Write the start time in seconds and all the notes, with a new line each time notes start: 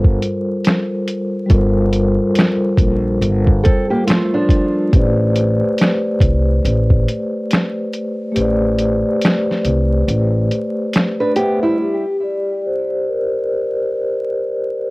Already playing: G1 G3 F4 A4 A#4 C5
0.04 kick
0.22 closed hi-hat
0.65 finger snap, snare, closed hi-hat
1.08 closed hi-hat
1.46 G3 F4, closed hi-hat
1.50 G1 A4 A#4, kick
1.56 C5
1.93 closed hi-hat
2.35 snare, closed hi-hat
2.40 finger snap
2.77 A#1, kick, closed hi-hat
3.21 G1, closed hi-hat
3.47 kick
3.64 C4 A4, kick, closed hi-hat
3.90 A#3 G4
4.07 A3 F4, snare, closed hi-hat
4.11 finger snap
4.34 F3 D4
4.49 kick, closed hi-hat
4.89 A3 G4
4.93 A1 B4 C5, kick, closed hi-hat
4.98 D5
5.36 closed hi-hat
5.78 snare, closed hi-hat
5.83 finger snap
6.20 C2, kick, closed hi-hat
6.65 A1, closed hi-hat
6.90 kick
7.08 closed hi-hat
7.51 finger snap, snare, closed hi-hat
7.93 closed hi-hat
8.32 A3 G4, closed hi-hat
8.36 A1 B4 C5
8.41 D5
8.79 closed hi-hat
9.22 snare, closed hi-hat
9.26 finger snap
9.51 snare
9.65 C2, closed hi-hat
10.08 A1, closed hi-hat
10.51 closed hi-hat
10.93 finger snap, snare, closed hi-hat
11.20 D4 B4
11.34 A3 B3 G4 B4 C5, closed hi-hat
11.39 E5
11.63 G3 E4
11.80 G4
12.23 D5
12.66 C5
13.09 A#4